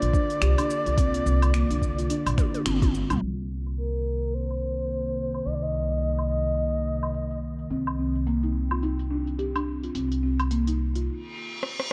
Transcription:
Already playing: ambient pad D3 A#3 F4, soft synth lead D5
0.02 upright bass A#1, open hi-hat
0.13 marimba D4, kick, shaker
0.30 open hi-hat, shaker
0.42 upright bass C2, marimba G4, finger snap, open hi-hat, shaker
0.58 marimba D4, open hi-hat, low woodblock, shaker
0.70 shaker
0.86 upright bass C2, marimba F4, open hi-hat, shaker
0.98 marimba C4, kick, open hi-hat, shaker
1.14 open hi-hat, shaker
1.26 upright bass C2, marimba C4, shaker
1.42 open hi-hat, low woodblock, shaker
1.54 marimba A#3, finger snap, open hi-hat, shaker
1.70 upright bass C2, marimba D4, open hi-hat, shaker
1.82 kick, shaker
1.98 marimba F4, open hi-hat, shaker
2.10 marimba D4, open hi-hat, shaker
2.26 upright bass A#1, open hi-hat, low woodblock, shaker
2.38 marimba D4, finger snap, kick, high tom, shaker
2.54 marimba D4, open hi-hat, high tom, shaker
2.66 upright bass G1, marimba C4, finger snap, open hi-hat, mid tom, shaker
2.82 marimba C4, kick, open hi-hat, mid tom, shaker
2.94 shaker
3.10 upright bass C2, marimba G3, mid tom, open hi-hat, low woodblock, shaker
3.22 upright bass C2, ambient pad C3 D#3 A#3, open hi-hat
3.38 open hi-hat
3.66 open hi-hat, low woodblock
3.78 soft synth lead A#4, open hi-hat
4.34 soft synth lead C5, open hi-hat
4.50 open hi-hat, low woodblock
4.78 open hi-hat
4.90 open hi-hat
5.07 open hi-hat
5.34 open hi-hat, low woodblock
5.45 upright bass C2, soft synth lead D#5, open hi-hat
5.55 soft synth lead D5
5.62 soft synth lead D#5, open hi-hat
5.91 open hi-hat
6.02 open hi-hat
6.19 open hi-hat, low woodblock
6.30 soft synth lead D#5
6.58 open hi-hat
6.75 open hi-hat
7.03 open hi-hat, low woodblock
7.14 open hi-hat
7.31 open hi-hat
7.59 open hi-hat
7.70 upright bass C2, marimba C4, ambient pad C4, open hi-hat
7.87 open hi-hat, low woodblock
7.99 marimba C4
8.15 open hi-hat
8.27 marimba A#3, open hi-hat
8.43 marimba D#4, open hi-hat
8.71 marimba F4, low woodblock
8.83 marimba D#4, open hi-hat
8.99 open hi-hat
9.11 marimba D4
9.27 open hi-hat
9.39 marimba G4, open hi-hat
9.55 marimba D4, open hi-hat, low woodblock
9.84 marimba F4, open hi-hat
9.95 upright bass C2, marimba C4, open hi-hat
10.12 open hi-hat
10.23 marimba C4
10.40 open hi-hat, low woodblock
10.51 marimba A#3, open hi-hat
10.67 marimba D#4, open hi-hat
10.95 marimba F4, open hi-hat
11.07 reverse cymbal
11.63 cross-stick
11.80 cross-stick

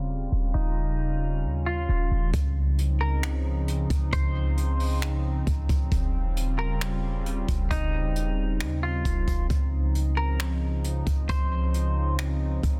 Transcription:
Already playing: 808-style bass D#1, ambient pad C#3 G3 C4 F4
0.32 808-style bass D#1
0.54 808-style bass D#1, ambient pad C#4, clean electric guitar D#4
1.44 808-style bass D#2
1.66 clean electric guitar F4
1.89 808-style bass D#1
2.11 808-style bass D#1
2.34 808-style bass C#2, ambient pad C#3 F3 C4 D#4, kick, closed hi-hat
2.78 closed hi-hat
3.01 clean electric guitar A#4
3.23 finger snap, closed hi-hat
3.68 closed hi-hat
3.90 808-style bass C#2, kick, closed hi-hat
4.13 808-style bass C#2, clean electric guitar C5, kick, closed hi-hat
4.58 closed hi-hat
4.80 open hi-hat
5.02 finger snap, closed hi-hat
5.47 808-style bass C#2, kick, closed hi-hat
5.69 808-style bass C#2, kick, closed hi-hat
5.92 808-style bass D#1, ambient pad C#3 G3 F4, kick, closed hi-hat
6.37 closed hi-hat
6.59 clean electric guitar A#4
6.81 finger snap, closed hi-hat
7.26 closed hi-hat
7.48 808-style bass D#1, kick, closed hi-hat
7.71 808-style bass D#1, clean electric guitar D#4, ambient pad D#4, kick, closed hi-hat
8.16 closed hi-hat
8.60 808-style bass D#2, finger snap, closed hi-hat
8.83 clean electric guitar F4
9.05 808-style bass D#1, kick, closed hi-hat
9.27 808-style bass D#1, kick, closed hi-hat
9.50 808-style bass C#2, ambient pad C#3 F3, kick, closed hi-hat
9.95 closed hi-hat
10.17 clean electric guitar A#4
10.40 finger snap, closed hi-hat
10.84 closed hi-hat
11.07 808-style bass C#2, kick, closed hi-hat
11.29 808-style bass C#2, clean electric guitar C5, kick, closed hi-hat
11.74 closed hi-hat
12.19 finger snap, closed hi-hat
12.63 808-style bass C#2, kick, closed hi-hat

